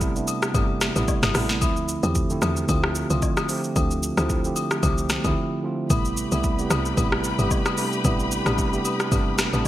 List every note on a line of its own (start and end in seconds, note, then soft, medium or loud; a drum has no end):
0.00 0.22 A1 loud
0.00 0.15 C3 medium
0.00 0.16 G3 medium
0.00 0.16 A3 medium
0.00 0.17 B3 medium
0.00 0.98 E4 loud
0.00 0.56 G4 loud
0.00 kick medium
0.00 shaker medium
0.15 0.47 C3 medium
0.15 0.47 G3 medium
0.15 0.48 A3 medium
0.15 0.48 B3 medium
0.15 0.48 D4 loud
0.15 shaker soft
0.28 high agogo medium
0.28 shaker medium
0.43 cross-stick loud
0.43 shaker medium
0.54 0.90 G1 loud
0.54 0.87 C3 loud
0.54 0.87 G3 medium
0.54 0.88 A3 medium
0.54 0.88 B3 medium
0.54 0.88 G4 loud
0.54 kick loud
0.54 high agogo medium
0.54 shaker medium
0.81 cross-stick medium
0.81 snare medium
0.81 shaker medium
0.95 1.06 A1 medium
0.95 1.27 C3 medium
0.95 1.28 G3 medium
0.95 1.28 A3 medium
0.95 1.28 B3 medium
0.95 1.29 E4 loud
0.95 high agogo medium
0.95 shaker medium
1.08 kick loud
1.08 low woodblock medium
1.08 shaker medium
1.23 1.33 G1 medium
1.23 cross-stick loud
1.23 snare medium
1.23 high agogo medium
1.23 shaker medium
1.34 1.63 A1 loud
1.34 1.57 C3 medium
1.34 1.57 G3 medium
1.34 1.57 A3 medium
1.34 1.58 B3 medium
1.34 1.58 E4 loud
1.34 cross-stick loud
1.34 open hi-hat medium
1.34 shaker medium
1.49 snare medium
1.49 shaker medium
1.61 1.97 D2 loud
1.61 1.94 D3 loud
1.61 1.94 F3 medium
1.61 1.95 A3 medium
1.61 1.95 C4 medium
1.61 1.95 E4 loud
1.61 kick loud
1.61 high agogo medium
1.61 shaker medium
1.77 shaker medium
1.89 shaker loud
2.03 2.36 E2 loud
2.03 2.24 D3 medium
2.03 2.24 F3 medium
2.03 2.25 A3 medium
2.03 2.25 C4 medium
2.03 2.25 G4 loud
2.03 high agogo medium
2.03 shaker medium
2.15 kick loud
2.15 shaker medium
2.29 2.61 D3 medium
2.29 2.62 F3 medium
2.29 2.62 A3 medium
2.29 2.62 C4 medium
2.29 2.63 E4 loud
2.29 shaker soft
2.42 2.65 E2 medium
2.42 cross-stick medium
2.42 high agogo medium
2.42 shaker medium
2.57 shaker medium
2.68 3.04 D2 loud
2.68 3.01 D3 medium
2.68 3.02 F3 medium
2.68 3.02 A3 medium
2.68 3.02 C4 medium
2.68 3.03 F4 loud
2.68 kick loud
2.68 high agogo medium
2.68 shaker medium
2.84 cross-stick loud
2.95 shaker medium
3.10 3.21 C2 medium
3.10 3.42 D3 medium
3.10 3.42 F3 medium
3.10 3.42 A3 medium
3.10 3.43 C4 medium
3.10 3.43 F4 loud
3.10 high agogo medium
3.10 shaker medium
3.22 kick loud
3.22 low woodblock medium
3.22 shaker medium
3.37 cross-stick loud
3.37 high agogo medium
3.37 shaker medium
3.49 3.71 D3 medium
3.49 3.71 F3 medium
3.49 3.72 A3 medium
3.49 3.72 C4 medium
3.49 3.72 G4 loud
3.49 open hi-hat medium
3.49 shaker medium
3.64 shaker medium
3.76 4.12 D2 loud
3.76 4.09 D3 medium
3.76 4.09 F3 medium
3.76 4.09 A3 medium
3.76 4.10 C4 medium
3.76 4.10 D4 loud
3.76 kick loud
3.76 high agogo medium
3.76 shaker medium
3.91 shaker medium
4.03 shaker loud
4.17 4.51 D2 loud
4.17 4.38 D3 medium
4.17 4.39 F3 medium
4.17 4.39 A3 medium
4.17 4.39 C4 medium
4.17 4.40 E4 loud
4.17 cross-stick medium
4.17 high agogo medium
4.17 shaker medium
4.30 kick loud
4.30 shaker medium
4.44 4.76 D3 medium
4.44 4.76 F3 medium
4.44 4.76 A3 medium
4.44 4.77 C4 medium
4.44 4.77 G4 loud
4.44 shaker soft
4.56 high agogo medium
4.56 shaker medium
4.71 cross-stick loud
4.71 shaker medium
4.83 5.19 C2 loud
4.83 5.16 D3 medium
4.83 5.16 F3 medium
4.83 5.16 A3 medium
4.83 5.17 C4 medium
4.83 5.17 G4 loud
4.83 kick loud
4.83 high agogo medium
4.83 shaker medium
4.98 shaker medium
5.09 cross-stick medium
5.09 snare medium
5.09 shaker medium
5.24 5.35 D2 loud
5.24 5.56 D3 medium
5.24 5.56 F3 medium
5.24 5.57 A3 medium
5.24 5.57 C4 medium
5.24 5.57 E4 loud
5.24 kick loud
5.24 high agogo medium
5.24 shaker medium
5.63 5.85 D3 medium
5.63 5.86 F3 medium
5.63 5.86 A3 medium
5.63 5.86 C4 medium
5.63 5.87 F4 loud
5.90 6.26 A1 loud
5.90 6.23 C3 medium
5.90 6.23 G3 medium
5.90 6.23 A3 medium
5.90 6.24 B3 medium
5.90 6.24 E4 loud
5.90 9.68 G4 medium
5.90 9.68 B4 medium
5.90 9.68 B5 medium
5.90 kick loud
5.90 high agogo medium
5.90 shaker medium
6.05 shaker medium
6.17 shaker loud
6.31 6.65 C2 loud
6.31 6.53 C3 medium
6.31 6.53 G3 medium
6.31 6.53 A3 medium
6.31 6.54 B3 medium
6.31 6.54 E4 loud
6.31 high agogo medium
6.31 shaker medium
6.44 kick medium
6.44 shaker medium
6.58 6.90 C3 medium
6.58 6.90 G3 medium
6.58 6.91 A3 medium
6.58 6.91 B3 medium
6.58 6.91 G4 loud
6.58 shaker soft
6.70 6.93 C2 loud
6.70 cross-stick medium
6.70 high agogo medium
6.70 shaker medium
6.85 shaker medium
6.97 7.33 A1 loud
6.97 7.30 C3 medium
6.97 7.30 G3 medium
6.97 7.31 A3 medium
6.97 7.31 B3 medium
6.97 7.31 E4 medium
6.97 kick loud
6.97 high agogo medium
6.97 shaker medium
7.12 cross-stick loud
7.24 shaker medium
7.38 7.49 G1 loud
7.38 7.70 C3 medium
7.38 7.71 G3 medium
7.38 7.71 A3 medium
7.38 7.71 B3 medium
7.38 7.72 G4 loud
7.38 high agogo medium
7.38 shaker medium
7.51 kick loud
7.51 low woodblock medium
7.51 shaker medium
7.65 cross-stick medium
7.65 high agogo medium
7.65 shaker medium
7.77 7.99 C3 medium
7.77 8.00 G3 medium
7.77 8.00 A3 medium
7.77 8.00 B3 medium
7.77 8.01 D4 loud
7.77 open hi-hat medium
7.77 shaker medium
7.93 shaker medium
8.04 8.40 A1 loud
8.04 8.37 C3 medium
8.04 8.37 G3 medium
8.04 8.38 A3 medium
8.04 8.38 B3 medium
8.04 8.38 E4 loud
8.04 kick loud
8.04 high agogo medium
8.04 shaker medium
8.20 shaker medium
8.32 shaker loud
8.45 8.79 A1 loud
8.45 8.67 C3 medium
8.45 8.67 G3 medium
8.45 8.67 A3 medium
8.45 8.68 B3 medium
8.45 8.68 D4 loud
8.45 cross-stick medium
8.45 high agogo medium
8.45 shaker medium
8.58 kick medium
8.58 shaker medium
8.72 9.04 C3 medium
8.72 9.05 G3 medium
8.72 9.05 A3 medium
8.72 9.05 B3 medium
8.72 9.05 G4 loud
8.72 shaker soft
8.85 high agogo medium
8.85 shaker medium
9.00 cross-stick loud
9.00 shaker medium
9.11 9.47 G1 loud
9.11 9.44 C3 medium
9.11 9.44 G3 medium
9.11 9.45 A3 medium
9.11 9.45 B3 medium
9.11 9.46 D4 loud
9.11 kick loud
9.11 high agogo medium
9.11 shaker medium
9.38 cross-stick medium
9.38 snare medium
9.38 shaker medium
9.53 9.64 A1 medium
9.53 9.68 C3 medium
9.53 9.68 G3 medium
9.53 9.68 A3 medium
9.53 9.68 B3 medium
9.53 9.68 D4 loud
9.53 high agogo medium
9.53 shaker medium